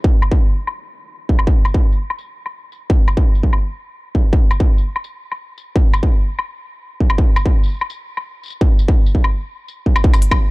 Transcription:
0.04 kick loud
0.22 tambourine medium
0.22 low woodblock medium
0.32 kick medium
0.67 low woodblock soft
1.29 kick medium
1.39 low woodblock medium
1.47 kick loud
1.65 tambourine medium
1.65 low woodblock medium
1.74 kick loud
1.92 tambourine soft
2.10 low woodblock soft
2.19 tambourine medium
2.46 low woodblock soft
2.72 tambourine medium
2.90 kick loud
3.08 tambourine medium
3.08 low woodblock medium
3.17 kick medium
3.35 tambourine soft
3.43 kick medium
3.53 low woodblock soft
4.15 kick medium
4.33 kick loud
4.51 tambourine medium
4.51 low woodblock medium
4.60 kick loud
4.78 tambourine soft
4.96 low woodblock soft
5.04 tambourine medium
5.32 low woodblock soft
5.58 tambourine medium
5.76 kick loud
5.94 tambourine medium
5.94 low woodblock medium
6.03 kick medium
6.39 low woodblock soft
7.01 kick medium
7.10 low woodblock medium
7.18 kick loud
7.36 tambourine medium
7.36 low woodblock medium
7.46 kick medium
7.63 tambourine soft
7.66 tambourine soft
7.68 tambourine soft
7.70 tambourine soft
7.72 tambourine soft
7.74 tambourine soft
7.77 tambourine soft
7.79 tambourine soft
7.79 low woodblock medium
7.90 tambourine medium
8.17 low woodblock soft
8.43 tambourine soft
8.46 tambourine soft
8.48 tambourine soft
8.50 tambourine medium
8.61 kick loud
8.79 tambourine medium
8.88 kick medium
9.06 tambourine soft
9.15 kick medium
9.24 low woodblock medium
9.68 tambourine soft
9.86 kick medium
9.96 tambourine soft
9.96 low woodblock medium
10.04 kick loud
10.14 tambourine soft
10.14 low woodblock medium
10.22 closed hi-hat medium
10.31 kick medium
10.31 low woodblock medium

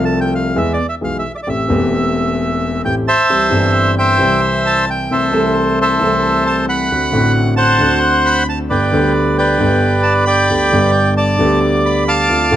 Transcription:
0.00 0.53 C2 medium
0.00 0.53 C3 medium
0.00 0.52 F3 medium
0.00 0.53 A3 medium
0.00 0.54 C4 medium
0.00 0.54 A4 medium
0.05 0.20 A5 medium
0.21 0.34 G5 medium
0.35 0.58 F5 medium
0.56 0.76 E2 medium
0.56 0.76 E3 medium
0.56 0.76 G#3 medium
0.56 0.76 B3 medium
0.56 0.76 G#4 medium
0.56 0.73 E5 medium
0.73 0.87 D5 medium
0.89 0.95 E5 medium
1.01 1.21 B1 medium
1.01 1.21 B2 soft
1.01 1.21 E3 soft
1.01 1.21 G#3 soft
1.01 1.21 B3 soft
1.01 1.21 G#4 soft
1.01 1.17 F5 medium
1.19 1.32 E5 medium
1.37 1.40 E5 medium
1.43 1.66 A3 soft
1.43 1.49 D5 medium
1.47 1.67 A1 soft
1.47 1.67 A2 soft
1.47 1.66 E3 soft
1.47 1.67 C4 soft
1.47 1.67 G4 soft
1.47 2.82 E5 medium
1.68 2.79 E1 medium
1.68 2.79 E2 medium
1.68 2.78 E3 medium
1.68 2.79 A3 medium
1.68 2.79 C4 medium
1.68 2.80 G4 medium
2.85 3.04 A1 medium
2.85 3.04 A2 medium
2.85 3.04 E3 soft
2.85 3.04 A3 soft
2.85 3.04 C4 soft
2.85 3.05 G4 medium
2.85 2.95 G5 medium
3.08 3.95 C5 medium
3.08 3.95 E5 medium
3.08 3.72 A5 loud
3.30 3.49 C2 soft
3.30 3.50 C3 soft
3.30 3.48 E3 soft
3.30 3.49 G3 soft
3.30 3.50 C4 soft
3.30 3.50 G4 soft
3.50 4.17 G1 medium
3.50 4.17 G2 medium
3.50 4.16 E3 medium
3.50 4.17 G3 medium
3.50 4.17 C4 medium
3.50 4.18 G4 medium
3.98 4.85 C5 medium
3.98 4.85 E5 medium
3.98 4.41 G5 medium
4.18 5.06 C2 medium
4.18 5.07 C3 medium
4.18 5.05 E3 medium
4.18 5.06 G3 medium
4.18 5.07 C4 medium
4.18 5.07 G4 medium
4.66 4.90 A5 medium
4.90 5.13 G5 medium
5.11 5.29 C2 soft
5.11 5.30 C3 medium
5.11 5.30 E3 soft
5.11 5.30 A3 soft
5.11 5.30 C4 soft
5.11 5.30 A4 soft
5.11 5.79 A4 medium
5.11 5.79 C5 medium
5.11 5.54 E5 medium
5.32 5.97 C2 medium
5.32 5.98 C3 medium
5.32 5.97 E3 medium
5.32 5.98 A3 medium
5.32 5.98 C4 medium
5.32 5.98 A4 medium
5.81 6.66 A4 medium
5.81 6.66 C5 medium
5.81 6.44 E5 medium
6.00 6.87 C2 medium
6.00 6.87 C3 medium
6.00 6.86 E3 medium
6.00 6.87 A3 medium
6.00 6.87 C4 medium
6.00 6.88 A4 medium
6.47 6.57 A5 medium
6.69 7.54 F#5 medium
6.69 7.32 B5 medium
6.91 7.10 D2 medium
6.91 7.10 D3 soft
6.91 7.11 A3 soft
6.91 7.10 C4 soft
6.91 7.11 F#4 medium
7.11 7.77 A1 medium
7.11 7.77 A2 medium
7.11 7.76 D3 medium
7.11 7.77 A3 medium
7.11 7.77 C4 medium
7.11 7.78 F#4 medium
7.56 8.43 C5 medium
7.56 8.43 F#5 medium
7.56 7.99 A5 loud
7.79 8.66 D2 medium
7.79 8.66 D3 medium
7.79 8.65 A3 medium
7.79 8.66 C4 medium
7.83 8.67 F#4 medium
8.26 8.47 B5 loud
8.49 8.59 A5 medium
8.70 8.89 G1 medium
8.70 8.89 G2 medium
8.70 8.89 D3 soft
8.70 8.89 G3 soft
8.70 8.89 B3 soft
8.70 8.89 G4 medium
8.70 9.37 B4 medium
8.70 9.38 D5 medium
8.70 9.13 G5 medium
8.92 9.57 D2 medium
8.92 9.57 D3 medium
8.92 9.57 G3 medium
8.92 9.57 B3 medium
8.92 9.58 G4 medium
9.38 10.25 B4 medium
9.38 10.25 D5 medium
9.38 10.02 G5 medium
9.58 10.46 G1 medium
9.58 10.46 G2 medium
9.58 10.45 D3 medium
9.58 10.46 G3 medium
9.58 10.46 B3 medium
9.58 10.47 G4 medium
10.03 10.14 A5 medium
10.25 11.14 D5 medium
10.25 11.14 G5 medium
10.25 10.91 B5 loud
10.50 10.70 D2 medium
10.50 10.70 D3 medium
10.50 10.69 G3 soft
10.50 10.70 B3 soft
10.50 10.70 G4 medium
10.71 11.38 G1 medium
10.71 11.38 G2 medium
10.71 11.36 D3 medium
10.71 11.37 G3 medium
10.71 11.38 B3 medium
10.71 11.38 G4 medium
11.17 12.04 D5 medium
11.17 11.60 A5 medium
11.37 12.26 D2 medium
11.37 11.39 D3 medium
11.37 12.26 D3 medium
11.37 12.26 G3 medium
11.37 12.26 B3 medium
11.42 12.27 G4 medium
11.86 12.09 B5 medium
12.08 12.56 F5 medium
12.08 12.56 A5 medium
12.08 12.56 D6 loud
12.29 12.49 D2 medium
12.29 12.49 D3 medium
12.29 12.49 A3 soft
12.29 12.49 C4 soft
12.29 12.49 F4 medium
12.51 12.56 A1 medium
12.51 12.56 A2 medium
12.51 12.56 D3 medium
12.51 12.56 A3 medium
12.51 12.56 C4 medium

